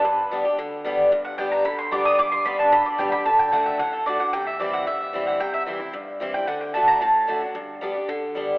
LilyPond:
<<
  \new Staff \with { instrumentName = "Mandolin" } { \time 4/4 \key g \major \tempo 4 = 224 b'2. r4 | r8 fis''8 g''8 bes''8 b''8 c'''8 d'''8 ees'''8 | d'''8 c'''8 b''8 a''8 b''8 d''8 g''8 b''8 | a''8 g''8 fis''8 e''8 fis''8 a'8 d''8 fis''8 |
g''8 e''8 d''8 fis''8 e''4. fis''8 | g''8 e''8 r2 r8 g''8 | fis''8 g''8 a''8 bes''8 a''2~ | a''4 r2. | }
  \new Staff \with { instrumentName = "Steel-string acoustic guitar" } { \time 4/4 \key g \major << { r4 <g b d' g'>8 <d' g'>8 r4 <g b d' g'>4 | r4 <g b d' g'>4 r4 <g b d' g'>4 | r4 <g b d' g'>4 r4 <g b d' g'>8 <d' g'>8 | r4 <d a d' fis'>4 r4 <d a d' fis'>8 <d' fis'>8 |
r4 <e g c' e'>4 r4 <e g c' e'>4 | r4 <e g c' e'>8 <c' e'>8 r4 <e g c' e'>8 <c' e'>8 | r4 <d a d' fis'>4 r4 <d a d' fis'>8 <d' fis'>8 | r4 <g b d' g'>8 <d' g'>8 r4 <g b d' g'>4 | } \\ { g,2 d2 | g,2 d2 | g,2 d2 | d2 a,2 |
c2 g,2 | c2 g,2 | d2 a,2 | g,2 d2 | } >> }
  \new Staff \with { instrumentName = "Upright bass" } { \clef bass \time 4/4 \key g \major g,,2 d,2 | g,,2 d,2 | g,,4 a,,4 b,,4 c,4 | d,2 a,,2 |
c,2 g,,2 | c,2 g,,2 | d,2 a,,2 | g,,2 d,2 | }
>>